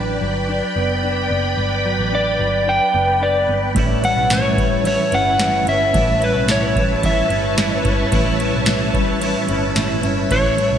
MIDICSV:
0, 0, Header, 1, 7, 480
1, 0, Start_track
1, 0, Tempo, 545455
1, 1390, Time_signature, 4, 2, 24, 8
1, 9490, End_track
2, 0, Start_track
2, 0, Title_t, "String machine"
2, 0, Program_c, 0, 50
2, 0, Note_on_c, 0, 71, 81
2, 0, Note_on_c, 0, 74, 70
2, 0, Note_on_c, 0, 79, 70
2, 0, Note_on_c, 0, 83, 87
2, 3274, Note_off_c, 0, 74, 0
2, 3274, Note_off_c, 0, 79, 0
2, 3274, Note_off_c, 0, 83, 0
2, 3307, Note_on_c, 0, 76, 70
2, 3309, Note_on_c, 0, 73, 68
2, 3310, Note_on_c, 0, 81, 84
2, 9490, Note_off_c, 0, 71, 0
2, 9490, Note_off_c, 0, 73, 0
2, 9490, Note_off_c, 0, 76, 0
2, 9490, Note_off_c, 0, 81, 0
2, 9490, End_track
3, 0, Start_track
3, 0, Title_t, "Electric slide guitar"
3, 0, Program_c, 1, 29
3, 1890, Note_on_c, 1, 74, 88
3, 2366, Note_on_c, 1, 79, 98
3, 2374, Note_off_c, 1, 74, 0
3, 2840, Note_on_c, 1, 74, 77
3, 2852, Note_off_c, 1, 79, 0
3, 3170, Note_off_c, 1, 74, 0
3, 3562, Note_on_c, 1, 78, 104
3, 3802, Note_off_c, 1, 78, 0
3, 3808, Note_on_c, 1, 73, 97
3, 4276, Note_off_c, 1, 73, 0
3, 4287, Note_on_c, 1, 73, 94
3, 4525, Note_off_c, 1, 73, 0
3, 4527, Note_on_c, 1, 78, 112
3, 5003, Note_off_c, 1, 78, 0
3, 5006, Note_on_c, 1, 76, 103
3, 5490, Note_on_c, 1, 71, 80
3, 5492, Note_off_c, 1, 76, 0
3, 5726, Note_off_c, 1, 71, 0
3, 5730, Note_on_c, 1, 73, 85
3, 6205, Note_off_c, 1, 73, 0
3, 6209, Note_on_c, 1, 76, 73
3, 6884, Note_off_c, 1, 76, 0
3, 9079, Note_on_c, 1, 73, 109
3, 9490, Note_off_c, 1, 73, 0
3, 9490, End_track
4, 0, Start_track
4, 0, Title_t, "Clean electric guitar"
4, 0, Program_c, 2, 27
4, 3297, Note_on_c, 2, 45, 90
4, 3309, Note_on_c, 2, 52, 86
4, 3318, Note_on_c, 2, 55, 92
4, 3327, Note_on_c, 2, 61, 91
4, 3334, Note_on_c, 2, 64, 93
4, 3524, Note_off_c, 2, 64, 0
4, 3534, Note_on_c, 2, 64, 51
4, 3543, Note_off_c, 2, 45, 0
4, 3549, Note_off_c, 2, 52, 0
4, 3552, Note_off_c, 2, 61, 0
4, 3554, Note_off_c, 2, 55, 0
4, 3562, Note_on_c, 2, 61, 48
4, 3586, Note_on_c, 2, 55, 41
4, 3779, Note_on_c, 2, 45, 79
4, 3782, Note_off_c, 2, 64, 0
4, 3787, Note_off_c, 2, 55, 0
4, 3789, Note_on_c, 2, 52, 76
4, 3796, Note_off_c, 2, 61, 0
4, 3798, Note_on_c, 2, 55, 90
4, 3806, Note_on_c, 2, 61, 93
4, 3812, Note_on_c, 2, 64, 86
4, 4003, Note_off_c, 2, 64, 0
4, 4013, Note_on_c, 2, 64, 51
4, 4024, Note_off_c, 2, 45, 0
4, 4029, Note_off_c, 2, 52, 0
4, 4032, Note_off_c, 2, 61, 0
4, 4033, Note_off_c, 2, 55, 0
4, 4043, Note_on_c, 2, 61, 50
4, 4065, Note_on_c, 2, 55, 46
4, 4254, Note_on_c, 2, 52, 61
4, 4261, Note_off_c, 2, 64, 0
4, 4263, Note_off_c, 2, 55, 0
4, 4273, Note_on_c, 2, 55, 61
4, 4276, Note_off_c, 2, 61, 0
4, 4289, Note_on_c, 2, 61, 62
4, 4306, Note_on_c, 2, 64, 63
4, 4485, Note_off_c, 2, 64, 0
4, 4496, Note_on_c, 2, 64, 56
4, 4502, Note_off_c, 2, 52, 0
4, 4511, Note_off_c, 2, 55, 0
4, 4513, Note_off_c, 2, 61, 0
4, 4524, Note_on_c, 2, 61, 50
4, 4547, Note_on_c, 2, 55, 43
4, 4737, Note_on_c, 2, 45, 64
4, 4742, Note_off_c, 2, 64, 0
4, 4746, Note_off_c, 2, 55, 0
4, 4748, Note_on_c, 2, 52, 71
4, 4756, Note_off_c, 2, 61, 0
4, 4756, Note_on_c, 2, 55, 66
4, 4766, Note_on_c, 2, 61, 71
4, 4773, Note_on_c, 2, 64, 80
4, 4963, Note_off_c, 2, 64, 0
4, 4973, Note_on_c, 2, 64, 51
4, 4983, Note_off_c, 2, 45, 0
4, 4989, Note_off_c, 2, 52, 0
4, 4991, Note_off_c, 2, 61, 0
4, 4993, Note_off_c, 2, 55, 0
4, 5001, Note_on_c, 2, 61, 47
4, 5025, Note_on_c, 2, 55, 46
4, 5218, Note_on_c, 2, 45, 85
4, 5221, Note_off_c, 2, 64, 0
4, 5228, Note_off_c, 2, 55, 0
4, 5228, Note_on_c, 2, 52, 86
4, 5235, Note_off_c, 2, 61, 0
4, 5238, Note_on_c, 2, 55, 87
4, 5246, Note_on_c, 2, 61, 80
4, 5254, Note_on_c, 2, 64, 88
4, 5443, Note_off_c, 2, 64, 0
4, 5453, Note_on_c, 2, 64, 54
4, 5464, Note_off_c, 2, 45, 0
4, 5468, Note_off_c, 2, 52, 0
4, 5472, Note_off_c, 2, 61, 0
4, 5474, Note_off_c, 2, 55, 0
4, 5482, Note_on_c, 2, 61, 54
4, 5506, Note_on_c, 2, 55, 45
4, 5694, Note_on_c, 2, 45, 83
4, 5701, Note_off_c, 2, 64, 0
4, 5704, Note_off_c, 2, 55, 0
4, 5706, Note_on_c, 2, 52, 84
4, 5712, Note_off_c, 2, 61, 0
4, 5715, Note_on_c, 2, 55, 94
4, 5723, Note_on_c, 2, 61, 87
4, 5731, Note_on_c, 2, 64, 93
4, 5922, Note_off_c, 2, 64, 0
4, 5933, Note_on_c, 2, 64, 60
4, 5942, Note_off_c, 2, 45, 0
4, 5948, Note_off_c, 2, 52, 0
4, 5952, Note_off_c, 2, 55, 0
4, 5953, Note_off_c, 2, 61, 0
4, 5963, Note_on_c, 2, 61, 49
4, 5986, Note_on_c, 2, 55, 51
4, 6175, Note_on_c, 2, 52, 66
4, 6181, Note_off_c, 2, 64, 0
4, 6184, Note_off_c, 2, 55, 0
4, 6195, Note_on_c, 2, 55, 62
4, 6196, Note_off_c, 2, 61, 0
4, 6211, Note_on_c, 2, 61, 69
4, 6226, Note_on_c, 2, 64, 65
4, 6400, Note_off_c, 2, 64, 0
4, 6411, Note_on_c, 2, 64, 55
4, 6422, Note_off_c, 2, 52, 0
4, 6429, Note_off_c, 2, 61, 0
4, 6432, Note_off_c, 2, 55, 0
4, 6439, Note_on_c, 2, 61, 49
4, 6463, Note_on_c, 2, 55, 45
4, 6655, Note_on_c, 2, 45, 61
4, 6660, Note_off_c, 2, 64, 0
4, 6662, Note_off_c, 2, 55, 0
4, 6665, Note_on_c, 2, 52, 66
4, 6671, Note_off_c, 2, 61, 0
4, 6673, Note_on_c, 2, 55, 75
4, 6681, Note_on_c, 2, 61, 76
4, 6689, Note_on_c, 2, 64, 84
4, 6883, Note_off_c, 2, 64, 0
4, 6893, Note_on_c, 2, 64, 63
4, 6902, Note_off_c, 2, 45, 0
4, 6907, Note_off_c, 2, 52, 0
4, 6911, Note_off_c, 2, 55, 0
4, 6911, Note_off_c, 2, 61, 0
4, 6922, Note_on_c, 2, 61, 53
4, 6946, Note_on_c, 2, 55, 56
4, 7137, Note_on_c, 2, 45, 96
4, 7141, Note_off_c, 2, 64, 0
4, 7147, Note_on_c, 2, 52, 86
4, 7148, Note_off_c, 2, 55, 0
4, 7155, Note_off_c, 2, 61, 0
4, 7158, Note_on_c, 2, 55, 90
4, 7166, Note_on_c, 2, 61, 91
4, 7173, Note_on_c, 2, 64, 108
4, 7362, Note_off_c, 2, 64, 0
4, 7372, Note_on_c, 2, 64, 55
4, 7383, Note_off_c, 2, 45, 0
4, 7388, Note_off_c, 2, 52, 0
4, 7391, Note_off_c, 2, 61, 0
4, 7394, Note_off_c, 2, 55, 0
4, 7401, Note_on_c, 2, 61, 52
4, 7423, Note_on_c, 2, 55, 47
4, 7618, Note_on_c, 2, 45, 92
4, 7621, Note_off_c, 2, 64, 0
4, 7628, Note_off_c, 2, 55, 0
4, 7628, Note_on_c, 2, 52, 100
4, 7635, Note_off_c, 2, 61, 0
4, 7638, Note_on_c, 2, 55, 97
4, 7647, Note_on_c, 2, 61, 109
4, 7654, Note_on_c, 2, 64, 112
4, 7844, Note_off_c, 2, 64, 0
4, 7854, Note_on_c, 2, 64, 59
4, 7864, Note_off_c, 2, 45, 0
4, 7869, Note_off_c, 2, 52, 0
4, 7873, Note_off_c, 2, 61, 0
4, 7874, Note_off_c, 2, 55, 0
4, 7884, Note_on_c, 2, 61, 60
4, 7906, Note_on_c, 2, 55, 56
4, 8094, Note_on_c, 2, 52, 70
4, 8102, Note_off_c, 2, 64, 0
4, 8103, Note_off_c, 2, 55, 0
4, 8114, Note_on_c, 2, 55, 65
4, 8116, Note_off_c, 2, 61, 0
4, 8130, Note_on_c, 2, 61, 72
4, 8146, Note_on_c, 2, 64, 71
4, 8324, Note_off_c, 2, 64, 0
4, 8335, Note_on_c, 2, 64, 64
4, 8342, Note_off_c, 2, 52, 0
4, 8351, Note_off_c, 2, 55, 0
4, 8354, Note_off_c, 2, 61, 0
4, 8364, Note_on_c, 2, 61, 60
4, 8389, Note_on_c, 2, 55, 53
4, 8580, Note_on_c, 2, 45, 76
4, 8582, Note_off_c, 2, 64, 0
4, 8588, Note_off_c, 2, 55, 0
4, 8591, Note_on_c, 2, 52, 84
4, 8597, Note_off_c, 2, 61, 0
4, 8599, Note_on_c, 2, 55, 84
4, 8606, Note_on_c, 2, 61, 84
4, 8616, Note_on_c, 2, 64, 85
4, 8808, Note_off_c, 2, 64, 0
4, 8818, Note_on_c, 2, 64, 60
4, 8824, Note_off_c, 2, 45, 0
4, 8830, Note_off_c, 2, 52, 0
4, 8834, Note_off_c, 2, 55, 0
4, 8837, Note_off_c, 2, 61, 0
4, 8848, Note_on_c, 2, 61, 56
4, 8871, Note_on_c, 2, 55, 50
4, 9062, Note_on_c, 2, 45, 77
4, 9064, Note_off_c, 2, 64, 0
4, 9072, Note_off_c, 2, 55, 0
4, 9072, Note_on_c, 2, 52, 91
4, 9078, Note_off_c, 2, 61, 0
4, 9082, Note_on_c, 2, 55, 76
4, 9089, Note_on_c, 2, 61, 79
4, 9099, Note_on_c, 2, 64, 88
4, 9287, Note_off_c, 2, 64, 0
4, 9298, Note_on_c, 2, 64, 61
4, 9305, Note_off_c, 2, 45, 0
4, 9311, Note_off_c, 2, 52, 0
4, 9315, Note_off_c, 2, 61, 0
4, 9316, Note_off_c, 2, 55, 0
4, 9325, Note_on_c, 2, 61, 45
4, 9349, Note_on_c, 2, 55, 44
4, 9490, Note_off_c, 2, 55, 0
4, 9490, Note_off_c, 2, 61, 0
4, 9490, Note_off_c, 2, 64, 0
4, 9490, End_track
5, 0, Start_track
5, 0, Title_t, "Clean electric guitar"
5, 0, Program_c, 3, 27
5, 0, Note_on_c, 3, 54, 57
5, 0, Note_on_c, 3, 62, 70
5, 176, Note_off_c, 3, 54, 0
5, 187, Note_on_c, 3, 54, 58
5, 419, Note_off_c, 3, 62, 0
5, 430, Note_on_c, 3, 62, 64
5, 670, Note_on_c, 3, 59, 62
5, 896, Note_off_c, 3, 62, 0
5, 907, Note_on_c, 3, 62, 68
5, 1139, Note_off_c, 3, 59, 0
5, 1150, Note_on_c, 3, 59, 60
5, 1619, Note_off_c, 3, 54, 0
5, 1630, Note_on_c, 3, 54, 57
5, 1861, Note_off_c, 3, 62, 0
5, 1871, Note_on_c, 3, 62, 72
5, 2097, Note_off_c, 3, 54, 0
5, 2108, Note_on_c, 3, 54, 59
5, 2339, Note_off_c, 3, 62, 0
5, 2349, Note_on_c, 3, 62, 68
5, 2577, Note_off_c, 3, 59, 0
5, 2587, Note_on_c, 3, 59, 59
5, 2818, Note_off_c, 3, 62, 0
5, 2829, Note_on_c, 3, 62, 65
5, 3060, Note_off_c, 3, 59, 0
5, 3070, Note_on_c, 3, 59, 60
5, 3357, Note_off_c, 3, 54, 0
5, 3357, Note_off_c, 3, 62, 0
5, 3358, Note_off_c, 3, 59, 0
5, 3548, Note_on_c, 3, 55, 57
5, 4028, Note_off_c, 3, 55, 0
5, 4269, Note_on_c, 3, 64, 68
5, 4745, Note_off_c, 3, 64, 0
5, 5949, Note_on_c, 3, 55, 56
5, 6187, Note_on_c, 3, 64, 67
5, 6665, Note_off_c, 3, 64, 0
5, 7382, Note_off_c, 3, 55, 0
5, 7386, Note_on_c, 3, 55, 60
5, 7867, Note_off_c, 3, 55, 0
5, 9305, Note_on_c, 3, 55, 59
5, 9490, Note_off_c, 3, 55, 0
5, 9490, End_track
6, 0, Start_track
6, 0, Title_t, "Picked electric bass"
6, 0, Program_c, 4, 34
6, 0, Note_on_c, 4, 33, 85
6, 171, Note_off_c, 4, 33, 0
6, 187, Note_on_c, 4, 31, 93
6, 530, Note_off_c, 4, 31, 0
6, 668, Note_on_c, 4, 30, 76
6, 1125, Note_off_c, 4, 30, 0
6, 1149, Note_on_c, 4, 30, 84
6, 1377, Note_off_c, 4, 30, 0
6, 1386, Note_on_c, 4, 31, 104
6, 1730, Note_off_c, 4, 31, 0
6, 1749, Note_on_c, 4, 33, 85
6, 2091, Note_off_c, 4, 33, 0
6, 2107, Note_on_c, 4, 31, 109
6, 2450, Note_off_c, 4, 31, 0
6, 2590, Note_on_c, 4, 30, 78
6, 3046, Note_off_c, 4, 30, 0
6, 3069, Note_on_c, 4, 31, 87
6, 3297, Note_off_c, 4, 31, 0
6, 3307, Note_on_c, 4, 33, 106
6, 3650, Note_off_c, 4, 33, 0
6, 3667, Note_on_c, 4, 35, 76
6, 4010, Note_off_c, 4, 35, 0
6, 4028, Note_on_c, 4, 33, 101
6, 4371, Note_off_c, 4, 33, 0
6, 4509, Note_on_c, 4, 31, 82
6, 4965, Note_off_c, 4, 31, 0
6, 4988, Note_on_c, 4, 31, 80
6, 5217, Note_off_c, 4, 31, 0
6, 5229, Note_on_c, 4, 33, 115
6, 5571, Note_off_c, 4, 33, 0
6, 5588, Note_on_c, 4, 35, 82
6, 5930, Note_off_c, 4, 35, 0
6, 5947, Note_on_c, 4, 33, 91
6, 6290, Note_off_c, 4, 33, 0
6, 6424, Note_on_c, 4, 31, 83
6, 6883, Note_off_c, 4, 31, 0
6, 6908, Note_on_c, 4, 31, 85
6, 7137, Note_off_c, 4, 31, 0
6, 7149, Note_on_c, 4, 33, 114
6, 7491, Note_off_c, 4, 33, 0
6, 7509, Note_on_c, 4, 35, 82
6, 7851, Note_off_c, 4, 35, 0
6, 7868, Note_on_c, 4, 33, 100
6, 8211, Note_off_c, 4, 33, 0
6, 8350, Note_on_c, 4, 31, 87
6, 8806, Note_off_c, 4, 31, 0
6, 8831, Note_on_c, 4, 31, 89
6, 9069, Note_off_c, 4, 31, 0
6, 9069, Note_on_c, 4, 33, 122
6, 9411, Note_off_c, 4, 33, 0
6, 9429, Note_on_c, 4, 35, 89
6, 9490, Note_off_c, 4, 35, 0
6, 9490, End_track
7, 0, Start_track
7, 0, Title_t, "Drums"
7, 3307, Note_on_c, 9, 51, 61
7, 3309, Note_on_c, 9, 36, 108
7, 3395, Note_off_c, 9, 51, 0
7, 3397, Note_off_c, 9, 36, 0
7, 3552, Note_on_c, 9, 51, 42
7, 3640, Note_off_c, 9, 51, 0
7, 3785, Note_on_c, 9, 51, 53
7, 3787, Note_on_c, 9, 38, 99
7, 3790, Note_on_c, 9, 54, 65
7, 3873, Note_off_c, 9, 51, 0
7, 3875, Note_off_c, 9, 38, 0
7, 3878, Note_off_c, 9, 54, 0
7, 4028, Note_on_c, 9, 36, 93
7, 4033, Note_on_c, 9, 51, 39
7, 4116, Note_off_c, 9, 36, 0
7, 4121, Note_off_c, 9, 51, 0
7, 4271, Note_on_c, 9, 51, 64
7, 4359, Note_off_c, 9, 51, 0
7, 4506, Note_on_c, 9, 51, 38
7, 4594, Note_off_c, 9, 51, 0
7, 4747, Note_on_c, 9, 51, 57
7, 4748, Note_on_c, 9, 38, 98
7, 4749, Note_on_c, 9, 54, 60
7, 4835, Note_off_c, 9, 51, 0
7, 4836, Note_off_c, 9, 38, 0
7, 4837, Note_off_c, 9, 54, 0
7, 4990, Note_on_c, 9, 51, 43
7, 5078, Note_off_c, 9, 51, 0
7, 5230, Note_on_c, 9, 36, 107
7, 5230, Note_on_c, 9, 51, 64
7, 5318, Note_off_c, 9, 36, 0
7, 5318, Note_off_c, 9, 51, 0
7, 5472, Note_on_c, 9, 51, 39
7, 5560, Note_off_c, 9, 51, 0
7, 5705, Note_on_c, 9, 51, 57
7, 5708, Note_on_c, 9, 38, 95
7, 5711, Note_on_c, 9, 54, 63
7, 5793, Note_off_c, 9, 51, 0
7, 5796, Note_off_c, 9, 38, 0
7, 5799, Note_off_c, 9, 54, 0
7, 5948, Note_on_c, 9, 36, 98
7, 5955, Note_on_c, 9, 51, 39
7, 6036, Note_off_c, 9, 36, 0
7, 6043, Note_off_c, 9, 51, 0
7, 6190, Note_on_c, 9, 51, 67
7, 6191, Note_on_c, 9, 36, 101
7, 6278, Note_off_c, 9, 51, 0
7, 6279, Note_off_c, 9, 36, 0
7, 6427, Note_on_c, 9, 51, 40
7, 6515, Note_off_c, 9, 51, 0
7, 6667, Note_on_c, 9, 51, 61
7, 6668, Note_on_c, 9, 38, 106
7, 6669, Note_on_c, 9, 54, 65
7, 6755, Note_off_c, 9, 51, 0
7, 6756, Note_off_c, 9, 38, 0
7, 6757, Note_off_c, 9, 54, 0
7, 6907, Note_on_c, 9, 51, 46
7, 6909, Note_on_c, 9, 36, 106
7, 6995, Note_off_c, 9, 51, 0
7, 6997, Note_off_c, 9, 36, 0
7, 7146, Note_on_c, 9, 51, 68
7, 7149, Note_on_c, 9, 36, 105
7, 7234, Note_off_c, 9, 51, 0
7, 7237, Note_off_c, 9, 36, 0
7, 7391, Note_on_c, 9, 51, 44
7, 7479, Note_off_c, 9, 51, 0
7, 7621, Note_on_c, 9, 51, 63
7, 7624, Note_on_c, 9, 38, 106
7, 7626, Note_on_c, 9, 54, 67
7, 7709, Note_off_c, 9, 51, 0
7, 7712, Note_off_c, 9, 38, 0
7, 7714, Note_off_c, 9, 54, 0
7, 7868, Note_on_c, 9, 36, 97
7, 7873, Note_on_c, 9, 51, 37
7, 7956, Note_off_c, 9, 36, 0
7, 7961, Note_off_c, 9, 51, 0
7, 8109, Note_on_c, 9, 51, 71
7, 8197, Note_off_c, 9, 51, 0
7, 8347, Note_on_c, 9, 51, 37
7, 8435, Note_off_c, 9, 51, 0
7, 8588, Note_on_c, 9, 51, 61
7, 8589, Note_on_c, 9, 38, 106
7, 8590, Note_on_c, 9, 54, 64
7, 8676, Note_off_c, 9, 51, 0
7, 8677, Note_off_c, 9, 38, 0
7, 8678, Note_off_c, 9, 54, 0
7, 8829, Note_on_c, 9, 51, 46
7, 8917, Note_off_c, 9, 51, 0
7, 9070, Note_on_c, 9, 36, 109
7, 9070, Note_on_c, 9, 51, 65
7, 9158, Note_off_c, 9, 36, 0
7, 9158, Note_off_c, 9, 51, 0
7, 9313, Note_on_c, 9, 51, 45
7, 9401, Note_off_c, 9, 51, 0
7, 9490, End_track
0, 0, End_of_file